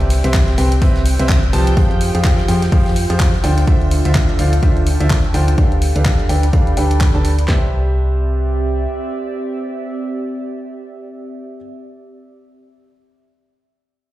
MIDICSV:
0, 0, Header, 1, 6, 480
1, 0, Start_track
1, 0, Key_signature, 0, "major"
1, 0, Tempo, 476190
1, 1783, Time_signature, 4, 2, 24, 8
1, 14234, End_track
2, 0, Start_track
2, 0, Title_t, "String machine"
2, 0, Program_c, 0, 50
2, 0, Note_on_c, 0, 79, 86
2, 7556, Note_off_c, 0, 79, 0
2, 14234, End_track
3, 0, Start_track
3, 0, Title_t, "Grand piano"
3, 0, Program_c, 1, 0
3, 0, Note_on_c, 1, 60, 75
3, 0, Note_on_c, 1, 67, 68
3, 0, Note_on_c, 1, 71, 66
3, 0, Note_on_c, 1, 72, 70
3, 0, Note_on_c, 1, 76, 83
3, 210, Note_off_c, 1, 60, 0
3, 210, Note_off_c, 1, 67, 0
3, 210, Note_off_c, 1, 71, 0
3, 210, Note_off_c, 1, 72, 0
3, 210, Note_off_c, 1, 76, 0
3, 244, Note_on_c, 1, 60, 79
3, 244, Note_on_c, 1, 67, 72
3, 244, Note_on_c, 1, 71, 72
3, 244, Note_on_c, 1, 72, 69
3, 244, Note_on_c, 1, 76, 88
3, 560, Note_off_c, 1, 60, 0
3, 560, Note_off_c, 1, 67, 0
3, 560, Note_off_c, 1, 71, 0
3, 560, Note_off_c, 1, 72, 0
3, 560, Note_off_c, 1, 76, 0
3, 583, Note_on_c, 1, 60, 81
3, 583, Note_on_c, 1, 67, 75
3, 583, Note_on_c, 1, 71, 72
3, 583, Note_on_c, 1, 72, 72
3, 583, Note_on_c, 1, 79, 88
3, 713, Note_off_c, 1, 60, 0
3, 713, Note_off_c, 1, 67, 0
3, 713, Note_off_c, 1, 71, 0
3, 713, Note_off_c, 1, 72, 0
3, 713, Note_off_c, 1, 79, 0
3, 823, Note_on_c, 1, 60, 81
3, 823, Note_on_c, 1, 67, 75
3, 823, Note_on_c, 1, 71, 77
3, 823, Note_on_c, 1, 72, 76
3, 823, Note_on_c, 1, 76, 92
3, 1011, Note_off_c, 1, 60, 0
3, 1011, Note_off_c, 1, 67, 0
3, 1011, Note_off_c, 1, 71, 0
3, 1011, Note_off_c, 1, 72, 0
3, 1011, Note_off_c, 1, 76, 0
3, 1203, Note_on_c, 1, 60, 87
3, 1203, Note_on_c, 1, 67, 80
3, 1203, Note_on_c, 1, 71, 82
3, 1203, Note_on_c, 1, 72, 81
3, 1203, Note_on_c, 1, 76, 96
3, 1370, Note_off_c, 1, 60, 0
3, 1370, Note_off_c, 1, 67, 0
3, 1370, Note_off_c, 1, 71, 0
3, 1370, Note_off_c, 1, 72, 0
3, 1370, Note_off_c, 1, 76, 0
3, 1543, Note_on_c, 1, 53, 88
3, 1543, Note_on_c, 1, 67, 83
3, 1543, Note_on_c, 1, 71, 82
3, 1543, Note_on_c, 1, 72, 85
3, 1543, Note_on_c, 1, 81, 100
3, 1731, Note_off_c, 1, 53, 0
3, 1731, Note_off_c, 1, 67, 0
3, 1731, Note_off_c, 1, 71, 0
3, 1731, Note_off_c, 1, 72, 0
3, 1731, Note_off_c, 1, 81, 0
3, 1784, Note_on_c, 1, 53, 73
3, 1784, Note_on_c, 1, 67, 67
3, 1784, Note_on_c, 1, 68, 68
3, 1784, Note_on_c, 1, 72, 71
3, 1784, Note_on_c, 1, 77, 83
3, 2130, Note_off_c, 1, 53, 0
3, 2130, Note_off_c, 1, 67, 0
3, 2130, Note_off_c, 1, 68, 0
3, 2130, Note_off_c, 1, 72, 0
3, 2130, Note_off_c, 1, 77, 0
3, 2163, Note_on_c, 1, 53, 80
3, 2164, Note_on_c, 1, 67, 70
3, 2164, Note_on_c, 1, 68, 72
3, 2164, Note_on_c, 1, 72, 70
3, 2164, Note_on_c, 1, 77, 87
3, 2479, Note_off_c, 1, 53, 0
3, 2479, Note_off_c, 1, 72, 0
3, 2480, Note_off_c, 1, 67, 0
3, 2480, Note_off_c, 1, 68, 0
3, 2480, Note_off_c, 1, 77, 0
3, 2503, Note_on_c, 1, 53, 80
3, 2503, Note_on_c, 1, 67, 74
3, 2503, Note_on_c, 1, 68, 75
3, 2503, Note_on_c, 1, 72, 74
3, 2503, Note_on_c, 1, 79, 89
3, 2633, Note_off_c, 1, 53, 0
3, 2633, Note_off_c, 1, 67, 0
3, 2633, Note_off_c, 1, 68, 0
3, 2633, Note_off_c, 1, 72, 0
3, 2633, Note_off_c, 1, 79, 0
3, 2744, Note_on_c, 1, 53, 79
3, 2744, Note_on_c, 1, 67, 77
3, 2744, Note_on_c, 1, 68, 73
3, 2744, Note_on_c, 1, 72, 75
3, 2744, Note_on_c, 1, 77, 90
3, 2931, Note_off_c, 1, 72, 0
3, 2932, Note_off_c, 1, 53, 0
3, 2932, Note_off_c, 1, 67, 0
3, 2932, Note_off_c, 1, 68, 0
3, 2932, Note_off_c, 1, 77, 0
3, 3124, Note_on_c, 1, 53, 88
3, 3124, Note_on_c, 1, 67, 79
3, 3124, Note_on_c, 1, 68, 79
3, 3124, Note_on_c, 1, 72, 80
3, 3124, Note_on_c, 1, 77, 96
3, 3290, Note_off_c, 1, 53, 0
3, 3290, Note_off_c, 1, 68, 0
3, 3290, Note_off_c, 1, 77, 0
3, 3291, Note_off_c, 1, 67, 0
3, 3291, Note_off_c, 1, 72, 0
3, 3464, Note_on_c, 1, 50, 90
3, 3464, Note_on_c, 1, 65, 84
3, 3464, Note_on_c, 1, 72, 86
3, 3464, Note_on_c, 1, 74, 83
3, 3464, Note_on_c, 1, 79, 101
3, 3651, Note_off_c, 1, 50, 0
3, 3651, Note_off_c, 1, 65, 0
3, 3651, Note_off_c, 1, 72, 0
3, 3651, Note_off_c, 1, 74, 0
3, 3651, Note_off_c, 1, 79, 0
3, 3704, Note_on_c, 1, 50, 70
3, 3704, Note_on_c, 1, 65, 67
3, 3704, Note_on_c, 1, 72, 68
3, 3704, Note_on_c, 1, 74, 66
3, 3704, Note_on_c, 1, 76, 81
3, 4050, Note_off_c, 1, 50, 0
3, 4050, Note_off_c, 1, 65, 0
3, 4050, Note_off_c, 1, 72, 0
3, 4050, Note_off_c, 1, 74, 0
3, 4050, Note_off_c, 1, 76, 0
3, 4084, Note_on_c, 1, 65, 73
3, 4085, Note_on_c, 1, 50, 76
3, 4085, Note_on_c, 1, 72, 70
3, 4085, Note_on_c, 1, 74, 69
3, 4085, Note_on_c, 1, 76, 84
3, 4400, Note_off_c, 1, 50, 0
3, 4400, Note_off_c, 1, 65, 0
3, 4400, Note_off_c, 1, 72, 0
3, 4400, Note_off_c, 1, 74, 0
3, 4400, Note_off_c, 1, 76, 0
3, 4424, Note_on_c, 1, 50, 81
3, 4424, Note_on_c, 1, 65, 73
3, 4424, Note_on_c, 1, 72, 74
3, 4424, Note_on_c, 1, 74, 75
3, 4424, Note_on_c, 1, 77, 86
3, 4553, Note_off_c, 1, 50, 0
3, 4553, Note_off_c, 1, 65, 0
3, 4553, Note_off_c, 1, 72, 0
3, 4553, Note_off_c, 1, 74, 0
3, 4553, Note_off_c, 1, 77, 0
3, 4664, Note_on_c, 1, 50, 80
3, 4664, Note_on_c, 1, 65, 75
3, 4664, Note_on_c, 1, 72, 75
3, 4664, Note_on_c, 1, 74, 74
3, 4664, Note_on_c, 1, 76, 87
3, 4852, Note_off_c, 1, 50, 0
3, 4852, Note_off_c, 1, 65, 0
3, 4852, Note_off_c, 1, 72, 0
3, 4852, Note_off_c, 1, 74, 0
3, 4852, Note_off_c, 1, 76, 0
3, 5044, Note_on_c, 1, 50, 84
3, 5044, Note_on_c, 1, 72, 77
3, 5045, Note_on_c, 1, 65, 79
3, 5045, Note_on_c, 1, 74, 75
3, 5045, Note_on_c, 1, 76, 93
3, 5211, Note_off_c, 1, 50, 0
3, 5211, Note_off_c, 1, 65, 0
3, 5211, Note_off_c, 1, 72, 0
3, 5211, Note_off_c, 1, 74, 0
3, 5211, Note_off_c, 1, 76, 0
3, 5385, Note_on_c, 1, 50, 90
3, 5385, Note_on_c, 1, 65, 82
3, 5385, Note_on_c, 1, 72, 79
3, 5385, Note_on_c, 1, 74, 82
3, 5385, Note_on_c, 1, 79, 95
3, 5572, Note_off_c, 1, 50, 0
3, 5572, Note_off_c, 1, 65, 0
3, 5572, Note_off_c, 1, 72, 0
3, 5572, Note_off_c, 1, 74, 0
3, 5572, Note_off_c, 1, 79, 0
3, 5624, Note_on_c, 1, 62, 73
3, 5624, Note_on_c, 1, 69, 68
3, 5624, Note_on_c, 1, 71, 68
3, 5624, Note_on_c, 1, 77, 78
3, 5625, Note_on_c, 1, 67, 67
3, 5970, Note_off_c, 1, 62, 0
3, 5970, Note_off_c, 1, 69, 0
3, 5970, Note_off_c, 1, 71, 0
3, 5970, Note_off_c, 1, 77, 0
3, 5971, Note_off_c, 1, 67, 0
3, 6004, Note_on_c, 1, 62, 73
3, 6004, Note_on_c, 1, 67, 70
3, 6004, Note_on_c, 1, 69, 71
3, 6004, Note_on_c, 1, 71, 69
3, 6004, Note_on_c, 1, 77, 81
3, 6320, Note_off_c, 1, 62, 0
3, 6320, Note_off_c, 1, 67, 0
3, 6320, Note_off_c, 1, 69, 0
3, 6320, Note_off_c, 1, 71, 0
3, 6320, Note_off_c, 1, 77, 0
3, 6343, Note_on_c, 1, 62, 79
3, 6343, Note_on_c, 1, 71, 72
3, 6343, Note_on_c, 1, 79, 84
3, 6344, Note_on_c, 1, 67, 70
3, 6344, Note_on_c, 1, 69, 68
3, 6473, Note_off_c, 1, 62, 0
3, 6473, Note_off_c, 1, 67, 0
3, 6473, Note_off_c, 1, 69, 0
3, 6473, Note_off_c, 1, 71, 0
3, 6473, Note_off_c, 1, 79, 0
3, 6583, Note_on_c, 1, 69, 72
3, 6584, Note_on_c, 1, 62, 78
3, 6584, Note_on_c, 1, 67, 70
3, 6584, Note_on_c, 1, 71, 71
3, 6584, Note_on_c, 1, 77, 87
3, 6771, Note_off_c, 1, 67, 0
3, 6771, Note_off_c, 1, 69, 0
3, 6771, Note_off_c, 1, 71, 0
3, 6771, Note_off_c, 1, 77, 0
3, 6772, Note_off_c, 1, 62, 0
3, 6825, Note_on_c, 1, 62, 82
3, 6825, Note_on_c, 1, 67, 76
3, 6825, Note_on_c, 1, 69, 77
3, 6825, Note_on_c, 1, 71, 76
3, 6825, Note_on_c, 1, 79, 91
3, 7171, Note_off_c, 1, 62, 0
3, 7171, Note_off_c, 1, 67, 0
3, 7171, Note_off_c, 1, 69, 0
3, 7171, Note_off_c, 1, 71, 0
3, 7171, Note_off_c, 1, 79, 0
3, 7204, Note_on_c, 1, 69, 68
3, 7204, Note_on_c, 1, 71, 66
3, 7204, Note_on_c, 1, 81, 80
3, 7205, Note_on_c, 1, 62, 72
3, 7205, Note_on_c, 1, 67, 65
3, 7371, Note_off_c, 1, 62, 0
3, 7371, Note_off_c, 1, 67, 0
3, 7371, Note_off_c, 1, 69, 0
3, 7371, Note_off_c, 1, 71, 0
3, 7371, Note_off_c, 1, 81, 0
3, 7544, Note_on_c, 1, 67, 76
3, 7544, Note_on_c, 1, 71, 70
3, 7544, Note_on_c, 1, 72, 68
3, 7544, Note_on_c, 1, 76, 83
3, 11650, Note_off_c, 1, 67, 0
3, 11650, Note_off_c, 1, 71, 0
3, 11650, Note_off_c, 1, 72, 0
3, 11651, Note_off_c, 1, 76, 0
3, 14234, End_track
4, 0, Start_track
4, 0, Title_t, "Ambient pad"
4, 0, Program_c, 2, 92
4, 0, Note_on_c, 2, 60, 72
4, 171, Note_on_c, 2, 74, 76
4, 744, Note_on_c, 2, 88, 73
4, 1783, Note_on_c, 2, 65, 75
4, 2238, Note_on_c, 2, 72, 69
4, 2464, Note_off_c, 2, 60, 0
4, 2464, Note_off_c, 2, 74, 0
4, 2464, Note_off_c, 2, 88, 0
4, 3462, Note_on_c, 2, 62, 89
4, 3634, Note_on_c, 2, 69, 77
4, 3946, Note_off_c, 2, 65, 0
4, 3958, Note_on_c, 2, 65, 80
4, 4344, Note_off_c, 2, 72, 0
4, 5625, Note_on_c, 2, 67, 82
4, 5939, Note_on_c, 2, 74, 76
4, 5962, Note_on_c, 2, 83, 84
4, 6399, Note_off_c, 2, 62, 0
4, 6400, Note_off_c, 2, 65, 0
4, 6400, Note_off_c, 2, 69, 0
4, 7544, Note_off_c, 2, 67, 0
4, 7544, Note_off_c, 2, 74, 0
4, 7544, Note_on_c, 2, 60, 74
4, 7545, Note_off_c, 2, 83, 0
4, 7629, Note_on_c, 2, 67, 73
4, 7704, Note_on_c, 2, 74, 72
4, 7766, Note_on_c, 2, 76, 72
4, 11651, Note_off_c, 2, 60, 0
4, 11736, Note_off_c, 2, 67, 0
4, 11811, Note_off_c, 2, 74, 0
4, 11872, Note_off_c, 2, 76, 0
4, 14234, End_track
5, 0, Start_track
5, 0, Title_t, "FM bass"
5, 0, Program_c, 3, 39
5, 0, Note_on_c, 3, 36, 98
5, 216, Note_off_c, 3, 36, 0
5, 244, Note_on_c, 3, 36, 98
5, 564, Note_off_c, 3, 36, 0
5, 583, Note_on_c, 3, 36, 94
5, 803, Note_off_c, 3, 36, 0
5, 824, Note_on_c, 3, 36, 96
5, 1176, Note_off_c, 3, 36, 0
5, 1204, Note_on_c, 3, 36, 96
5, 1523, Note_off_c, 3, 36, 0
5, 1543, Note_on_c, 3, 36, 95
5, 1764, Note_off_c, 3, 36, 0
5, 1784, Note_on_c, 3, 41, 93
5, 2136, Note_off_c, 3, 41, 0
5, 2164, Note_on_c, 3, 41, 92
5, 2484, Note_off_c, 3, 41, 0
5, 2503, Note_on_c, 3, 41, 95
5, 2724, Note_off_c, 3, 41, 0
5, 2744, Note_on_c, 3, 41, 96
5, 3096, Note_off_c, 3, 41, 0
5, 3124, Note_on_c, 3, 41, 95
5, 3444, Note_off_c, 3, 41, 0
5, 3464, Note_on_c, 3, 38, 96
5, 3684, Note_off_c, 3, 38, 0
5, 3704, Note_on_c, 3, 38, 93
5, 4056, Note_off_c, 3, 38, 0
5, 4084, Note_on_c, 3, 38, 94
5, 4404, Note_off_c, 3, 38, 0
5, 4423, Note_on_c, 3, 38, 93
5, 4644, Note_off_c, 3, 38, 0
5, 4664, Note_on_c, 3, 38, 92
5, 5016, Note_off_c, 3, 38, 0
5, 5044, Note_on_c, 3, 38, 94
5, 5364, Note_off_c, 3, 38, 0
5, 5384, Note_on_c, 3, 38, 92
5, 5604, Note_off_c, 3, 38, 0
5, 5624, Note_on_c, 3, 38, 93
5, 5976, Note_off_c, 3, 38, 0
5, 6004, Note_on_c, 3, 38, 95
5, 6324, Note_off_c, 3, 38, 0
5, 6344, Note_on_c, 3, 38, 91
5, 6564, Note_off_c, 3, 38, 0
5, 6584, Note_on_c, 3, 38, 92
5, 6804, Note_off_c, 3, 38, 0
5, 6823, Note_on_c, 3, 38, 93
5, 7176, Note_off_c, 3, 38, 0
5, 7204, Note_on_c, 3, 38, 90
5, 7524, Note_off_c, 3, 38, 0
5, 7544, Note_on_c, 3, 36, 92
5, 8943, Note_off_c, 3, 36, 0
5, 14234, End_track
6, 0, Start_track
6, 0, Title_t, "Drums"
6, 4, Note_on_c, 9, 42, 28
6, 104, Note_on_c, 9, 46, 101
6, 105, Note_off_c, 9, 42, 0
6, 106, Note_on_c, 9, 42, 68
6, 107, Note_on_c, 9, 38, 36
6, 205, Note_off_c, 9, 46, 0
6, 207, Note_off_c, 9, 38, 0
6, 207, Note_off_c, 9, 42, 0
6, 244, Note_on_c, 9, 42, 55
6, 341, Note_on_c, 9, 39, 126
6, 342, Note_on_c, 9, 38, 108
6, 344, Note_off_c, 9, 42, 0
6, 344, Note_on_c, 9, 36, 117
6, 344, Note_on_c, 9, 42, 52
6, 348, Note_off_c, 9, 42, 0
6, 348, Note_on_c, 9, 42, 81
6, 441, Note_off_c, 9, 39, 0
6, 443, Note_off_c, 9, 38, 0
6, 445, Note_off_c, 9, 36, 0
6, 448, Note_off_c, 9, 42, 0
6, 484, Note_on_c, 9, 42, 28
6, 487, Note_on_c, 9, 38, 38
6, 581, Note_off_c, 9, 42, 0
6, 581, Note_on_c, 9, 42, 64
6, 584, Note_on_c, 9, 46, 90
6, 588, Note_off_c, 9, 38, 0
6, 682, Note_off_c, 9, 42, 0
6, 685, Note_off_c, 9, 46, 0
6, 724, Note_on_c, 9, 42, 55
6, 824, Note_off_c, 9, 42, 0
6, 824, Note_on_c, 9, 36, 110
6, 824, Note_on_c, 9, 42, 56
6, 828, Note_off_c, 9, 42, 0
6, 828, Note_on_c, 9, 42, 95
6, 925, Note_off_c, 9, 36, 0
6, 929, Note_off_c, 9, 42, 0
6, 961, Note_on_c, 9, 38, 41
6, 964, Note_on_c, 9, 42, 25
6, 1062, Note_off_c, 9, 38, 0
6, 1064, Note_on_c, 9, 46, 103
6, 1065, Note_off_c, 9, 42, 0
6, 1066, Note_on_c, 9, 42, 69
6, 1165, Note_off_c, 9, 46, 0
6, 1166, Note_off_c, 9, 42, 0
6, 1204, Note_on_c, 9, 42, 52
6, 1301, Note_on_c, 9, 39, 122
6, 1303, Note_on_c, 9, 38, 107
6, 1304, Note_off_c, 9, 42, 0
6, 1304, Note_on_c, 9, 36, 122
6, 1304, Note_on_c, 9, 42, 53
6, 1306, Note_off_c, 9, 42, 0
6, 1306, Note_on_c, 9, 42, 82
6, 1402, Note_off_c, 9, 39, 0
6, 1404, Note_off_c, 9, 38, 0
6, 1405, Note_off_c, 9, 36, 0
6, 1406, Note_off_c, 9, 42, 0
6, 1445, Note_on_c, 9, 42, 26
6, 1543, Note_off_c, 9, 42, 0
6, 1543, Note_on_c, 9, 42, 59
6, 1545, Note_on_c, 9, 46, 89
6, 1644, Note_off_c, 9, 42, 0
6, 1645, Note_off_c, 9, 46, 0
6, 1685, Note_on_c, 9, 42, 52
6, 1784, Note_on_c, 9, 36, 123
6, 1785, Note_off_c, 9, 42, 0
6, 1785, Note_on_c, 9, 42, 52
6, 1786, Note_off_c, 9, 42, 0
6, 1786, Note_on_c, 9, 42, 83
6, 1885, Note_off_c, 9, 36, 0
6, 1887, Note_off_c, 9, 42, 0
6, 1925, Note_on_c, 9, 42, 26
6, 2024, Note_on_c, 9, 46, 105
6, 2025, Note_off_c, 9, 42, 0
6, 2029, Note_on_c, 9, 42, 63
6, 2125, Note_off_c, 9, 46, 0
6, 2130, Note_off_c, 9, 42, 0
6, 2164, Note_on_c, 9, 42, 52
6, 2261, Note_on_c, 9, 38, 107
6, 2261, Note_on_c, 9, 39, 118
6, 2264, Note_on_c, 9, 36, 123
6, 2265, Note_off_c, 9, 42, 0
6, 2265, Note_on_c, 9, 42, 53
6, 2268, Note_off_c, 9, 42, 0
6, 2268, Note_on_c, 9, 42, 77
6, 2361, Note_off_c, 9, 38, 0
6, 2362, Note_off_c, 9, 39, 0
6, 2365, Note_off_c, 9, 36, 0
6, 2369, Note_off_c, 9, 42, 0
6, 2396, Note_on_c, 9, 38, 63
6, 2405, Note_on_c, 9, 42, 26
6, 2497, Note_off_c, 9, 38, 0
6, 2502, Note_off_c, 9, 42, 0
6, 2502, Note_on_c, 9, 42, 66
6, 2504, Note_on_c, 9, 46, 96
6, 2603, Note_off_c, 9, 42, 0
6, 2605, Note_off_c, 9, 46, 0
6, 2643, Note_on_c, 9, 38, 54
6, 2645, Note_on_c, 9, 42, 51
6, 2744, Note_off_c, 9, 38, 0
6, 2744, Note_on_c, 9, 36, 116
6, 2745, Note_off_c, 9, 42, 0
6, 2745, Note_on_c, 9, 42, 51
6, 2748, Note_on_c, 9, 46, 80
6, 2845, Note_off_c, 9, 36, 0
6, 2846, Note_off_c, 9, 42, 0
6, 2848, Note_off_c, 9, 46, 0
6, 2885, Note_on_c, 9, 42, 24
6, 2889, Note_on_c, 9, 38, 40
6, 2985, Note_on_c, 9, 46, 103
6, 2986, Note_off_c, 9, 42, 0
6, 2988, Note_on_c, 9, 42, 70
6, 2990, Note_off_c, 9, 38, 0
6, 3086, Note_off_c, 9, 46, 0
6, 3088, Note_off_c, 9, 42, 0
6, 3125, Note_on_c, 9, 42, 47
6, 3221, Note_on_c, 9, 39, 123
6, 3224, Note_on_c, 9, 36, 123
6, 3225, Note_off_c, 9, 42, 0
6, 3225, Note_on_c, 9, 42, 52
6, 3226, Note_on_c, 9, 38, 105
6, 3227, Note_off_c, 9, 42, 0
6, 3227, Note_on_c, 9, 42, 87
6, 3322, Note_off_c, 9, 39, 0
6, 3325, Note_off_c, 9, 36, 0
6, 3326, Note_off_c, 9, 38, 0
6, 3328, Note_off_c, 9, 42, 0
6, 3365, Note_on_c, 9, 42, 42
6, 3366, Note_off_c, 9, 42, 0
6, 3366, Note_on_c, 9, 42, 25
6, 3464, Note_off_c, 9, 42, 0
6, 3464, Note_on_c, 9, 42, 58
6, 3465, Note_on_c, 9, 46, 89
6, 3565, Note_off_c, 9, 42, 0
6, 3566, Note_off_c, 9, 46, 0
6, 3603, Note_on_c, 9, 42, 39
6, 3605, Note_off_c, 9, 42, 0
6, 3605, Note_on_c, 9, 42, 49
6, 3704, Note_on_c, 9, 36, 120
6, 3705, Note_off_c, 9, 42, 0
6, 3705, Note_on_c, 9, 42, 48
6, 3805, Note_off_c, 9, 36, 0
6, 3806, Note_off_c, 9, 42, 0
6, 3845, Note_on_c, 9, 42, 24
6, 3945, Note_on_c, 9, 46, 106
6, 3946, Note_off_c, 9, 42, 0
6, 4046, Note_off_c, 9, 46, 0
6, 4085, Note_on_c, 9, 42, 49
6, 4181, Note_on_c, 9, 39, 116
6, 4184, Note_on_c, 9, 36, 121
6, 4185, Note_off_c, 9, 42, 0
6, 4185, Note_on_c, 9, 42, 48
6, 4282, Note_off_c, 9, 39, 0
6, 4285, Note_off_c, 9, 36, 0
6, 4285, Note_off_c, 9, 42, 0
6, 4325, Note_on_c, 9, 42, 25
6, 4424, Note_on_c, 9, 46, 93
6, 4426, Note_off_c, 9, 42, 0
6, 4525, Note_off_c, 9, 46, 0
6, 4565, Note_on_c, 9, 42, 48
6, 4664, Note_on_c, 9, 36, 114
6, 4665, Note_off_c, 9, 42, 0
6, 4665, Note_on_c, 9, 42, 48
6, 4765, Note_off_c, 9, 36, 0
6, 4766, Note_off_c, 9, 42, 0
6, 4805, Note_on_c, 9, 42, 23
6, 4905, Note_on_c, 9, 46, 105
6, 4906, Note_off_c, 9, 42, 0
6, 5006, Note_off_c, 9, 46, 0
6, 5045, Note_on_c, 9, 42, 45
6, 5142, Note_on_c, 9, 39, 116
6, 5144, Note_on_c, 9, 36, 124
6, 5145, Note_off_c, 9, 42, 0
6, 5145, Note_on_c, 9, 42, 49
6, 5242, Note_off_c, 9, 39, 0
6, 5245, Note_off_c, 9, 36, 0
6, 5246, Note_off_c, 9, 42, 0
6, 5285, Note_on_c, 9, 42, 25
6, 5385, Note_on_c, 9, 46, 91
6, 5386, Note_off_c, 9, 42, 0
6, 5485, Note_off_c, 9, 46, 0
6, 5525, Note_on_c, 9, 42, 47
6, 5624, Note_off_c, 9, 42, 0
6, 5624, Note_on_c, 9, 36, 117
6, 5624, Note_on_c, 9, 42, 44
6, 5725, Note_off_c, 9, 36, 0
6, 5725, Note_off_c, 9, 42, 0
6, 5765, Note_on_c, 9, 42, 24
6, 5864, Note_on_c, 9, 46, 99
6, 5866, Note_off_c, 9, 42, 0
6, 5965, Note_off_c, 9, 46, 0
6, 6005, Note_on_c, 9, 42, 47
6, 6101, Note_on_c, 9, 39, 111
6, 6104, Note_off_c, 9, 42, 0
6, 6104, Note_on_c, 9, 36, 116
6, 6104, Note_on_c, 9, 42, 45
6, 6202, Note_off_c, 9, 39, 0
6, 6205, Note_off_c, 9, 36, 0
6, 6205, Note_off_c, 9, 42, 0
6, 6245, Note_on_c, 9, 42, 24
6, 6344, Note_on_c, 9, 46, 89
6, 6346, Note_off_c, 9, 42, 0
6, 6445, Note_off_c, 9, 46, 0
6, 6485, Note_on_c, 9, 42, 46
6, 6584, Note_off_c, 9, 42, 0
6, 6584, Note_on_c, 9, 36, 115
6, 6584, Note_on_c, 9, 42, 46
6, 6685, Note_off_c, 9, 36, 0
6, 6685, Note_off_c, 9, 42, 0
6, 6725, Note_on_c, 9, 42, 22
6, 6824, Note_on_c, 9, 46, 102
6, 6826, Note_off_c, 9, 42, 0
6, 6925, Note_off_c, 9, 46, 0
6, 6965, Note_on_c, 9, 42, 44
6, 7061, Note_on_c, 9, 39, 107
6, 7064, Note_on_c, 9, 36, 117
6, 7065, Note_off_c, 9, 42, 0
6, 7065, Note_on_c, 9, 42, 47
6, 7162, Note_off_c, 9, 39, 0
6, 7165, Note_off_c, 9, 36, 0
6, 7166, Note_off_c, 9, 42, 0
6, 7205, Note_on_c, 9, 42, 22
6, 7305, Note_on_c, 9, 46, 90
6, 7306, Note_off_c, 9, 42, 0
6, 7406, Note_off_c, 9, 46, 0
6, 7445, Note_on_c, 9, 42, 45
6, 7544, Note_on_c, 9, 36, 96
6, 7544, Note_on_c, 9, 38, 94
6, 7544, Note_on_c, 9, 39, 80
6, 7546, Note_off_c, 9, 42, 0
6, 7645, Note_off_c, 9, 36, 0
6, 7645, Note_off_c, 9, 38, 0
6, 7645, Note_off_c, 9, 39, 0
6, 14234, End_track
0, 0, End_of_file